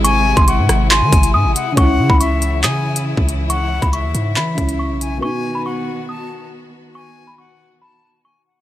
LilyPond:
<<
  \new Staff \with { instrumentName = "Celesta" } { \time 4/4 \key cis \minor \tempo 4 = 139 cis'''8. bis''16 cis'''4 bis''4 dis'''4 | cis'''8. b''16 cis'''4 dis'''2 | cis'''8. b''16 cis'''4 b''4 cis'''4 | cis'''8. b''16 cis'''4 dis'''2 |
cis'''8. b''16 cis'''4 b''4 cis'''4 | }
  \new Staff \with { instrumentName = "Flute" } { \time 4/4 \key cis \minor gis''4 fis''4 gis''4 gis''8 fis''8 | fis''4 e''4 gis''4 r4 | fis''4 e''2~ e''8 gis''8 | gis''4 fis''4 a''4 r4 |
gis''4 fis''4 a''4 gis''8 fis''8 | }
  \new Staff \with { instrumentName = "Grand piano" } { \time 4/4 \key cis \minor <gis bis gis' dis''>1 | <cis cis' e'>1~ | <cis cis' e'>2~ <cis cis' e'>8 <cis cis' e'>4. | <b, b dis' fis'>1~ |
<b, b dis' fis'>1 | }
  \new Staff \with { instrumentName = "String section" } { \clef bass \time 4/4 \key cis \minor <bis, gis e'>1 | <cis e e'>1~ | <cis e e'>1 | <dis b fis'>1~ |
<dis b fis'>1 | }
  \new Staff \with { instrumentName = "808-style bass" } { \clef bass \time 4/4 \key cis \minor gis,,8. gis,,8 gis,16 gis,,8. dis16 gis,,8 gis,16 gis,,16 r8 | cis,8 cis16 cis,4~ cis,16 cis4~ cis16 cis,8.~ | cis,8. cis,8 dis,16 gis,8 e8 cis,8. b,,8. | r1 |
r1 | }
  \new DrumStaff \with { instrumentName = "Drums" } \drummode { \time 4/4 hh8. <hh bd>16 hh8 <hh ss>8 hc8 <hh bd>16 hh16 r8 hh8 | <hh bd>8. bd16 hh8 hh8 <hc hh>8. hh16 r16 bd16 hh8 | hh8. <hh bd>16 hh8 hh8 hc8 <hh bd>16 hh16 r8 hh8 | r4 r4 r4 r4 |
r4 r4 r4 r4 | }
>>